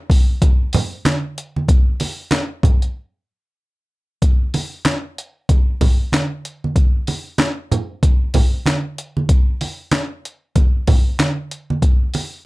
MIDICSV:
0, 0, Header, 1, 2, 480
1, 0, Start_track
1, 0, Tempo, 634249
1, 1273, Time_signature, 4, 2, 24, 8
1, 9424, End_track
2, 0, Start_track
2, 0, Title_t, "Drums"
2, 74, Note_on_c, 9, 36, 105
2, 84, Note_on_c, 9, 46, 80
2, 149, Note_off_c, 9, 36, 0
2, 160, Note_off_c, 9, 46, 0
2, 316, Note_on_c, 9, 36, 97
2, 317, Note_on_c, 9, 42, 101
2, 320, Note_on_c, 9, 62, 54
2, 392, Note_off_c, 9, 36, 0
2, 393, Note_off_c, 9, 42, 0
2, 396, Note_off_c, 9, 62, 0
2, 551, Note_on_c, 9, 46, 79
2, 563, Note_on_c, 9, 62, 58
2, 563, Note_on_c, 9, 64, 74
2, 627, Note_off_c, 9, 46, 0
2, 639, Note_off_c, 9, 62, 0
2, 639, Note_off_c, 9, 64, 0
2, 795, Note_on_c, 9, 63, 81
2, 804, Note_on_c, 9, 38, 99
2, 804, Note_on_c, 9, 39, 83
2, 804, Note_on_c, 9, 42, 100
2, 871, Note_off_c, 9, 63, 0
2, 879, Note_off_c, 9, 42, 0
2, 880, Note_off_c, 9, 38, 0
2, 880, Note_off_c, 9, 39, 0
2, 1043, Note_on_c, 9, 42, 80
2, 1119, Note_off_c, 9, 42, 0
2, 1184, Note_on_c, 9, 63, 62
2, 1260, Note_off_c, 9, 63, 0
2, 1274, Note_on_c, 9, 62, 32
2, 1276, Note_on_c, 9, 36, 106
2, 1278, Note_on_c, 9, 42, 96
2, 1350, Note_off_c, 9, 62, 0
2, 1351, Note_off_c, 9, 36, 0
2, 1354, Note_off_c, 9, 42, 0
2, 1513, Note_on_c, 9, 46, 66
2, 1519, Note_on_c, 9, 62, 57
2, 1588, Note_off_c, 9, 46, 0
2, 1595, Note_off_c, 9, 62, 0
2, 1747, Note_on_c, 9, 63, 80
2, 1755, Note_on_c, 9, 42, 87
2, 1757, Note_on_c, 9, 38, 105
2, 1757, Note_on_c, 9, 39, 77
2, 1823, Note_off_c, 9, 63, 0
2, 1831, Note_off_c, 9, 42, 0
2, 1832, Note_off_c, 9, 38, 0
2, 1832, Note_off_c, 9, 39, 0
2, 1993, Note_on_c, 9, 36, 97
2, 1995, Note_on_c, 9, 64, 71
2, 2005, Note_on_c, 9, 42, 81
2, 2069, Note_off_c, 9, 36, 0
2, 2071, Note_off_c, 9, 64, 0
2, 2080, Note_off_c, 9, 42, 0
2, 2136, Note_on_c, 9, 42, 49
2, 2212, Note_off_c, 9, 42, 0
2, 3193, Note_on_c, 9, 62, 30
2, 3194, Note_on_c, 9, 36, 101
2, 3196, Note_on_c, 9, 42, 92
2, 3268, Note_off_c, 9, 62, 0
2, 3270, Note_off_c, 9, 36, 0
2, 3271, Note_off_c, 9, 42, 0
2, 3435, Note_on_c, 9, 46, 67
2, 3437, Note_on_c, 9, 62, 62
2, 3510, Note_off_c, 9, 46, 0
2, 3513, Note_off_c, 9, 62, 0
2, 3671, Note_on_c, 9, 63, 76
2, 3675, Note_on_c, 9, 42, 82
2, 3676, Note_on_c, 9, 38, 104
2, 3676, Note_on_c, 9, 39, 82
2, 3746, Note_off_c, 9, 63, 0
2, 3751, Note_off_c, 9, 42, 0
2, 3752, Note_off_c, 9, 38, 0
2, 3752, Note_off_c, 9, 39, 0
2, 3923, Note_on_c, 9, 42, 74
2, 3999, Note_off_c, 9, 42, 0
2, 4156, Note_on_c, 9, 36, 93
2, 4156, Note_on_c, 9, 62, 59
2, 4158, Note_on_c, 9, 42, 94
2, 4231, Note_off_c, 9, 36, 0
2, 4232, Note_off_c, 9, 62, 0
2, 4233, Note_off_c, 9, 42, 0
2, 4397, Note_on_c, 9, 46, 73
2, 4398, Note_on_c, 9, 36, 84
2, 4400, Note_on_c, 9, 62, 50
2, 4400, Note_on_c, 9, 64, 74
2, 4473, Note_off_c, 9, 36, 0
2, 4473, Note_off_c, 9, 46, 0
2, 4475, Note_off_c, 9, 62, 0
2, 4475, Note_off_c, 9, 64, 0
2, 4634, Note_on_c, 9, 63, 70
2, 4646, Note_on_c, 9, 38, 96
2, 4646, Note_on_c, 9, 39, 78
2, 4646, Note_on_c, 9, 42, 93
2, 4710, Note_off_c, 9, 63, 0
2, 4721, Note_off_c, 9, 42, 0
2, 4722, Note_off_c, 9, 38, 0
2, 4722, Note_off_c, 9, 39, 0
2, 4882, Note_on_c, 9, 42, 73
2, 4958, Note_off_c, 9, 42, 0
2, 5027, Note_on_c, 9, 63, 55
2, 5102, Note_off_c, 9, 63, 0
2, 5114, Note_on_c, 9, 36, 90
2, 5115, Note_on_c, 9, 42, 99
2, 5189, Note_off_c, 9, 36, 0
2, 5191, Note_off_c, 9, 42, 0
2, 5353, Note_on_c, 9, 46, 65
2, 5359, Note_on_c, 9, 62, 57
2, 5429, Note_off_c, 9, 46, 0
2, 5435, Note_off_c, 9, 62, 0
2, 5587, Note_on_c, 9, 63, 81
2, 5596, Note_on_c, 9, 42, 79
2, 5598, Note_on_c, 9, 38, 115
2, 5598, Note_on_c, 9, 39, 76
2, 5662, Note_off_c, 9, 63, 0
2, 5672, Note_off_c, 9, 42, 0
2, 5673, Note_off_c, 9, 38, 0
2, 5673, Note_off_c, 9, 39, 0
2, 5839, Note_on_c, 9, 64, 71
2, 5843, Note_on_c, 9, 42, 76
2, 5915, Note_off_c, 9, 64, 0
2, 5918, Note_off_c, 9, 42, 0
2, 6076, Note_on_c, 9, 36, 88
2, 6076, Note_on_c, 9, 62, 54
2, 6079, Note_on_c, 9, 42, 106
2, 6151, Note_off_c, 9, 36, 0
2, 6151, Note_off_c, 9, 62, 0
2, 6155, Note_off_c, 9, 42, 0
2, 6311, Note_on_c, 9, 46, 74
2, 6315, Note_on_c, 9, 36, 77
2, 6316, Note_on_c, 9, 62, 55
2, 6316, Note_on_c, 9, 64, 80
2, 6386, Note_off_c, 9, 46, 0
2, 6391, Note_off_c, 9, 36, 0
2, 6392, Note_off_c, 9, 62, 0
2, 6392, Note_off_c, 9, 64, 0
2, 6551, Note_on_c, 9, 63, 67
2, 6564, Note_on_c, 9, 38, 90
2, 6564, Note_on_c, 9, 39, 75
2, 6564, Note_on_c, 9, 42, 89
2, 6627, Note_off_c, 9, 63, 0
2, 6640, Note_off_c, 9, 38, 0
2, 6640, Note_off_c, 9, 39, 0
2, 6640, Note_off_c, 9, 42, 0
2, 6799, Note_on_c, 9, 42, 76
2, 6875, Note_off_c, 9, 42, 0
2, 6938, Note_on_c, 9, 63, 63
2, 7013, Note_off_c, 9, 63, 0
2, 7031, Note_on_c, 9, 36, 98
2, 7031, Note_on_c, 9, 42, 98
2, 7032, Note_on_c, 9, 62, 32
2, 7107, Note_off_c, 9, 36, 0
2, 7107, Note_off_c, 9, 42, 0
2, 7108, Note_off_c, 9, 62, 0
2, 7272, Note_on_c, 9, 46, 59
2, 7274, Note_on_c, 9, 62, 57
2, 7348, Note_off_c, 9, 46, 0
2, 7350, Note_off_c, 9, 62, 0
2, 7504, Note_on_c, 9, 63, 83
2, 7511, Note_on_c, 9, 42, 83
2, 7512, Note_on_c, 9, 38, 110
2, 7512, Note_on_c, 9, 39, 81
2, 7579, Note_off_c, 9, 63, 0
2, 7586, Note_off_c, 9, 42, 0
2, 7588, Note_off_c, 9, 38, 0
2, 7588, Note_off_c, 9, 39, 0
2, 7760, Note_on_c, 9, 42, 75
2, 7836, Note_off_c, 9, 42, 0
2, 7988, Note_on_c, 9, 62, 55
2, 7990, Note_on_c, 9, 36, 89
2, 7990, Note_on_c, 9, 42, 101
2, 8064, Note_off_c, 9, 62, 0
2, 8065, Note_off_c, 9, 42, 0
2, 8066, Note_off_c, 9, 36, 0
2, 8230, Note_on_c, 9, 46, 74
2, 8232, Note_on_c, 9, 36, 91
2, 8234, Note_on_c, 9, 62, 54
2, 8234, Note_on_c, 9, 64, 76
2, 8305, Note_off_c, 9, 46, 0
2, 8308, Note_off_c, 9, 36, 0
2, 8309, Note_off_c, 9, 62, 0
2, 8309, Note_off_c, 9, 64, 0
2, 8470, Note_on_c, 9, 63, 74
2, 8475, Note_on_c, 9, 38, 99
2, 8475, Note_on_c, 9, 39, 80
2, 8475, Note_on_c, 9, 42, 91
2, 8546, Note_off_c, 9, 63, 0
2, 8551, Note_off_c, 9, 38, 0
2, 8551, Note_off_c, 9, 39, 0
2, 8551, Note_off_c, 9, 42, 0
2, 8714, Note_on_c, 9, 42, 74
2, 8790, Note_off_c, 9, 42, 0
2, 8856, Note_on_c, 9, 63, 64
2, 8932, Note_off_c, 9, 63, 0
2, 8947, Note_on_c, 9, 62, 31
2, 8948, Note_on_c, 9, 36, 108
2, 8950, Note_on_c, 9, 42, 97
2, 9023, Note_off_c, 9, 36, 0
2, 9023, Note_off_c, 9, 62, 0
2, 9025, Note_off_c, 9, 42, 0
2, 9185, Note_on_c, 9, 46, 68
2, 9193, Note_on_c, 9, 62, 57
2, 9260, Note_off_c, 9, 46, 0
2, 9269, Note_off_c, 9, 62, 0
2, 9424, End_track
0, 0, End_of_file